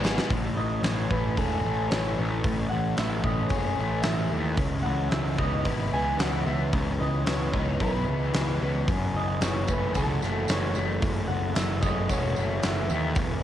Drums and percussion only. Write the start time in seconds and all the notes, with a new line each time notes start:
0.03 snare, tambourine
0.18 snare
0.30 kick, open hi-hat
0.83 snare, open hi-hat
1.11 kick
1.37 kick, open hi-hat
1.91 snare, open hi-hat
2.44 kick, open hi-hat
2.97 snare, open hi-hat
3.24 kick
3.50 kick, open hi-hat
4.03 snare, open hi-hat
4.57 kick, open hi-hat
5.11 snare, open hi-hat
5.39 kick
5.65 kick, open hi-hat
6.19 snare, open hi-hat
6.73 kick, open hi-hat
7.26 snare, open hi-hat
7.54 kick
7.80 kick, open hi-hat
8.34 snare, open hi-hat
8.88 kick, open hi-hat, tambourine
9.41 snare, open hi-hat, tambourine
9.67 kick, tambourine
9.94 kick, open hi-hat, tambourine
10.22 snare, tambourine
10.48 snare, open hi-hat, tambourine
10.75 tambourine
11.02 kick, open hi-hat, tambourine
11.55 snare, open hi-hat, tambourine
11.83 kick, tambourine
12.09 kick, open hi-hat, tambourine
12.36 tambourine
12.63 snare, open hi-hat, tambourine
12.90 tambourine
13.15 kick, open hi-hat, tambourine